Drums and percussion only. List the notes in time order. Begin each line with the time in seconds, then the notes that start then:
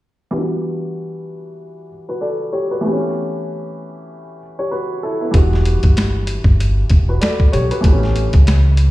5.34 kick, closed hi-hat
5.53 snare
5.66 closed hi-hat
5.83 kick, closed hi-hat
5.97 snare, closed hi-hat
6.27 closed hi-hat
6.44 kick
6.60 closed hi-hat
6.90 kick, closed hi-hat
7.22 snare, closed hi-hat
7.40 kick
7.53 closed hi-hat
7.71 closed hi-hat
7.84 kick, closed hi-hat
8.03 snare
8.16 closed hi-hat
8.33 kick, closed hi-hat
8.47 snare, closed hi-hat
8.77 closed hi-hat